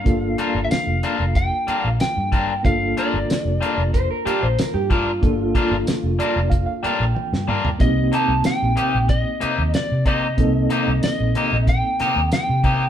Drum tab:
HH |x-x-x-x-x-x-x-x-|x-x-x-x-x-x-x-x-|x-x-x-x-x-x-----|x-x-x-x-x-x-x-x-|
TB |----x-------x---|----x-------x---|----x-----------|----x-------x---|
SD |----o-------o---|----o-------o---|----o--------o--|----o-------o---|
T1 |----------------|----------------|------------o---|----------------|
T2 |----------------|----------------|--------------o-|----------------|
FT |----------------|----------------|---------------o|----------------|
BD |o-------o-----o-|o-------o-----o-|o-o-----o-------|o-------o-----o-|

HH |x-x-x-x-x-x-x-x-|
TB |----x-------x---|
SD |----o-----o-o---|
T1 |----------------|
T2 |----------------|
FT |----------------|
BD |o-------o-----o-|